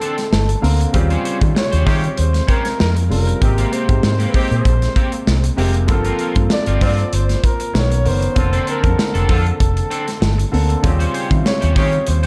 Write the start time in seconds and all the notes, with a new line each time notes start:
Already playing: D3 A#3 C4 A4 A5
0.01 C4 D4 A4, closed hi-hat
0.18 muted clean electric guitar stroke, snare, closed hi-hat
0.31 G1 A5, muted clean electric guitar stroke, snare
0.49 muted clean electric guitar stroke, closed hi-hat
0.62 D2 D3 A#3 C4 A#4 F5, open hi-hat
0.80 muted clean electric guitar stroke, closed hi-hat
0.93 D#2 C#3 G3 C4 F4 G4, muted clean electric guitar stroke, kick, closed hi-hat
1.10 C#4 G4 C5, closed hi-hat
1.24 C#4 G4 C5, closed hi-hat
1.41 C3 C#3 D#3 G3 F4, muted clean electric guitar stroke, kick, closed hi-hat
1.55 C#5, muted clean electric guitar stroke, snare
1.72 D#2 C#4 G4 C5, closed hi-hat
1.86 C3 C#3 D#3 C#4 G4 C5 C#5, kick, snare, open hi-hat
2.02 muted clean electric guitar stroke, closed hi-hat
2.17 D#2 C5, muted clean electric guitar stroke, closed hi-hat
2.33 muted clean electric guitar stroke, snare, closed hi-hat
2.47 C#4 G4 A#4 C5, kick, closed hi-hat
2.64 muted clean electric guitar stroke, snare, closed hi-hat
2.79 F2 A#4, muted clean electric guitar stroke, snare
2.95 muted clean electric guitar stroke, closed hi-hat
3.09 F1 C#3 G3 C4 F4 A#4, open hi-hat
3.27 muted clean electric guitar stroke, closed hi-hat
3.41 G#1 C3 D#3 G#3 A#3 C4 G4, muted clean electric guitar stroke, kick, closed hi-hat
3.58 A#3 C4 G4, closed hi-hat
3.71 A#3 C4 G4 C5, closed hi-hat
3.88 G#2 C3 G#3 A#3 G4, muted clean electric guitar stroke, kick, closed hi-hat
4.03 G#2, muted clean electric guitar stroke, snare
4.19 A#3 C4 G4, closed hi-hat
4.28 B4
4.34 D#3 A#3 C4 G4 C5, kick, open hi-hat
4.51 A#2, muted clean electric guitar stroke, closed hi-hat
4.65 A#1, muted clean electric guitar stroke, kick, closed hi-hat
4.82 muted clean electric guitar stroke, snare, closed hi-hat
4.96 A#3 C4 G4, kick, closed hi-hat
5.12 muted clean electric guitar stroke, closed hi-hat
5.27 C2, snare
5.44 muted clean electric guitar stroke, closed hi-hat
5.57 F1 C3 G#3 A#3 C4 G4, open hi-hat
5.74 muted clean electric guitar stroke, closed hi-hat
5.87 G1 D3 F3 A#3 C4 F4 A4, muted clean electric guitar stroke, kick, closed hi-hat
6.05 C4 F4 A#4, closed hi-hat
6.19 C4 F4 A#4, closed hi-hat
6.35 G2 F3 A#3 C4 A4, muted clean electric guitar stroke, kick, closed hi-hat
6.50 D5, muted clean electric guitar stroke, snare
6.66 G1 C4 F4 A#4, closed hi-hat
6.81 G2 D3 C4 F4 A#4 D5, kick, snare, open hi-hat
6.99 muted clean electric guitar stroke, closed hi-hat
7.13 G1 C5, muted clean electric guitar stroke, closed hi-hat
7.29 muted clean electric guitar stroke, snare, closed hi-hat
7.44 A#4, kick, closed hi-hat
7.60 muted clean electric guitar stroke, closed hi-hat
7.73 B1 D#3 B3 C#4 A#4 C#5, muted clean electric guitar stroke, snare
7.90 muted clean electric guitar stroke, closed hi-hat
8.04 F#1 D#3 B3 C#4 A#4, open hi-hat
8.08 C5
8.21 muted clean electric guitar stroke, closed hi-hat
8.35 F1 D3 A#3 C4 F4 A4, muted clean electric guitar stroke, kick, closed hi-hat
8.53 C4 D4 A4, closed hi-hat
8.67 C4 D4 A4 A#4, closed hi-hat
8.83 F2 C#3 A#3 C4 A5, muted clean electric guitar stroke, kick, closed hi-hat
8.89 D3
8.97 muted clean electric guitar stroke, snare
9.14 F1 C4 D4 A4, closed hi-hat
9.29 F2 D3 C4 D4 F4 A4, kick, open hi-hat
9.46 muted clean electric guitar stroke, closed hi-hat
9.60 F1, muted clean electric guitar stroke, kick, closed hi-hat
9.77 muted clean electric guitar stroke, closed hi-hat
9.90 C4 D4 A4, closed hi-hat
10.07 muted clean electric guitar stroke, snare, closed hi-hat
10.21 G1, muted clean electric guitar stroke, snare
10.38 muted clean electric guitar stroke, closed hi-hat
10.52 D2 D3 A#3 C4 A4, open hi-hat
10.69 muted clean electric guitar stroke, closed hi-hat
10.83 D#2 C#3 G3 C4 F4 G4, muted clean electric guitar stroke, kick, closed hi-hat
10.99 C#4 G4 C5, closed hi-hat
11.14 C#4 G4 C5, closed hi-hat
11.29 C3 C#3 D#3 G3 E4, muted clean electric guitar stroke, kick, closed hi-hat
11.37 F4
11.45 C#5, muted clean electric guitar stroke, snare
11.61 D#2 C#4 G4 C5, closed hi-hat
11.75 C3 C#3 D#3 C#4 G4 C5 C#5, kick, snare, open hi-hat
11.92 muted clean electric guitar stroke, closed hi-hat
12.07 D#2 C5, muted clean electric guitar stroke, closed hi-hat
12.23 C5, closed hi-hat